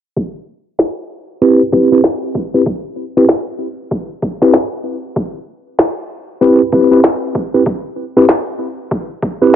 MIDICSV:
0, 0, Header, 1, 3, 480
1, 0, Start_track
1, 0, Tempo, 625000
1, 127, Time_signature, 4, 2, 24, 8
1, 7341, End_track
2, 0, Start_track
2, 0, Title_t, "Tine electric piano"
2, 0, Program_c, 0, 4
2, 1087, Note_on_c, 0, 60, 81
2, 1088, Note_on_c, 0, 64, 76
2, 1088, Note_on_c, 0, 67, 76
2, 1088, Note_on_c, 0, 71, 89
2, 1233, Note_off_c, 0, 60, 0
2, 1233, Note_off_c, 0, 64, 0
2, 1233, Note_off_c, 0, 67, 0
2, 1234, Note_off_c, 0, 71, 0
2, 1326, Note_on_c, 0, 60, 78
2, 1326, Note_on_c, 0, 64, 73
2, 1326, Note_on_c, 0, 67, 73
2, 1327, Note_on_c, 0, 71, 87
2, 1451, Note_off_c, 0, 60, 0
2, 1451, Note_off_c, 0, 64, 0
2, 1451, Note_off_c, 0, 67, 0
2, 1451, Note_off_c, 0, 71, 0
2, 1473, Note_on_c, 0, 67, 76
2, 1474, Note_on_c, 0, 60, 82
2, 1474, Note_on_c, 0, 64, 77
2, 1474, Note_on_c, 0, 71, 92
2, 1531, Note_off_c, 0, 67, 0
2, 1532, Note_off_c, 0, 60, 0
2, 1532, Note_off_c, 0, 64, 0
2, 1532, Note_off_c, 0, 71, 0
2, 1952, Note_on_c, 0, 60, 74
2, 1952, Note_on_c, 0, 64, 69
2, 1952, Note_on_c, 0, 67, 70
2, 1952, Note_on_c, 0, 71, 82
2, 2011, Note_off_c, 0, 60, 0
2, 2011, Note_off_c, 0, 64, 0
2, 2011, Note_off_c, 0, 67, 0
2, 2011, Note_off_c, 0, 71, 0
2, 2434, Note_on_c, 0, 60, 81
2, 2434, Note_on_c, 0, 64, 77
2, 2434, Note_on_c, 0, 67, 76
2, 2434, Note_on_c, 0, 71, 90
2, 2492, Note_off_c, 0, 60, 0
2, 2492, Note_off_c, 0, 64, 0
2, 2492, Note_off_c, 0, 67, 0
2, 2492, Note_off_c, 0, 71, 0
2, 3392, Note_on_c, 0, 60, 91
2, 3393, Note_on_c, 0, 71, 95
2, 3394, Note_on_c, 0, 64, 83
2, 3394, Note_on_c, 0, 67, 81
2, 3486, Note_off_c, 0, 60, 0
2, 3486, Note_off_c, 0, 71, 0
2, 3487, Note_off_c, 0, 64, 0
2, 3487, Note_off_c, 0, 67, 0
2, 4924, Note_on_c, 0, 60, 83
2, 4924, Note_on_c, 0, 64, 76
2, 4924, Note_on_c, 0, 67, 76
2, 4924, Note_on_c, 0, 71, 91
2, 5071, Note_off_c, 0, 60, 0
2, 5071, Note_off_c, 0, 67, 0
2, 5072, Note_off_c, 0, 64, 0
2, 5072, Note_off_c, 0, 71, 0
2, 5165, Note_on_c, 0, 67, 73
2, 5165, Note_on_c, 0, 71, 91
2, 5166, Note_on_c, 0, 60, 79
2, 5166, Note_on_c, 0, 64, 73
2, 5290, Note_off_c, 0, 67, 0
2, 5291, Note_off_c, 0, 60, 0
2, 5291, Note_off_c, 0, 64, 0
2, 5291, Note_off_c, 0, 71, 0
2, 5310, Note_on_c, 0, 60, 86
2, 5310, Note_on_c, 0, 67, 75
2, 5311, Note_on_c, 0, 71, 92
2, 5312, Note_on_c, 0, 64, 78
2, 5370, Note_off_c, 0, 60, 0
2, 5370, Note_off_c, 0, 67, 0
2, 5370, Note_off_c, 0, 71, 0
2, 5371, Note_off_c, 0, 64, 0
2, 5792, Note_on_c, 0, 60, 75
2, 5792, Note_on_c, 0, 64, 69
2, 5792, Note_on_c, 0, 67, 69
2, 5793, Note_on_c, 0, 71, 83
2, 5851, Note_off_c, 0, 60, 0
2, 5851, Note_off_c, 0, 64, 0
2, 5851, Note_off_c, 0, 67, 0
2, 5851, Note_off_c, 0, 71, 0
2, 6273, Note_on_c, 0, 60, 85
2, 6273, Note_on_c, 0, 64, 77
2, 6273, Note_on_c, 0, 67, 77
2, 6274, Note_on_c, 0, 71, 92
2, 6331, Note_off_c, 0, 60, 0
2, 6331, Note_off_c, 0, 64, 0
2, 6331, Note_off_c, 0, 67, 0
2, 6332, Note_off_c, 0, 71, 0
2, 7233, Note_on_c, 0, 60, 90
2, 7233, Note_on_c, 0, 64, 84
2, 7233, Note_on_c, 0, 67, 83
2, 7233, Note_on_c, 0, 71, 97
2, 7326, Note_off_c, 0, 60, 0
2, 7326, Note_off_c, 0, 64, 0
2, 7326, Note_off_c, 0, 67, 0
2, 7326, Note_off_c, 0, 71, 0
2, 7341, End_track
3, 0, Start_track
3, 0, Title_t, "Drums"
3, 126, Note_on_c, 9, 36, 112
3, 203, Note_off_c, 9, 36, 0
3, 605, Note_on_c, 9, 38, 113
3, 682, Note_off_c, 9, 38, 0
3, 1324, Note_on_c, 9, 36, 100
3, 1401, Note_off_c, 9, 36, 0
3, 1565, Note_on_c, 9, 38, 112
3, 1642, Note_off_c, 9, 38, 0
3, 1804, Note_on_c, 9, 36, 101
3, 1881, Note_off_c, 9, 36, 0
3, 2044, Note_on_c, 9, 36, 117
3, 2121, Note_off_c, 9, 36, 0
3, 2524, Note_on_c, 9, 38, 119
3, 2601, Note_off_c, 9, 38, 0
3, 3004, Note_on_c, 9, 36, 106
3, 3081, Note_off_c, 9, 36, 0
3, 3244, Note_on_c, 9, 36, 103
3, 3321, Note_off_c, 9, 36, 0
3, 3392, Note_on_c, 9, 38, 35
3, 3469, Note_off_c, 9, 38, 0
3, 3483, Note_on_c, 9, 38, 117
3, 3560, Note_off_c, 9, 38, 0
3, 3964, Note_on_c, 9, 36, 122
3, 4041, Note_off_c, 9, 36, 0
3, 4444, Note_on_c, 9, 38, 118
3, 4521, Note_off_c, 9, 38, 0
3, 5164, Note_on_c, 9, 36, 102
3, 5241, Note_off_c, 9, 36, 0
3, 5405, Note_on_c, 9, 38, 120
3, 5481, Note_off_c, 9, 38, 0
3, 5644, Note_on_c, 9, 36, 105
3, 5721, Note_off_c, 9, 36, 0
3, 5884, Note_on_c, 9, 36, 119
3, 5961, Note_off_c, 9, 36, 0
3, 6364, Note_on_c, 9, 38, 123
3, 6441, Note_off_c, 9, 38, 0
3, 6845, Note_on_c, 9, 36, 107
3, 6921, Note_off_c, 9, 36, 0
3, 7085, Note_on_c, 9, 36, 104
3, 7161, Note_off_c, 9, 36, 0
3, 7341, End_track
0, 0, End_of_file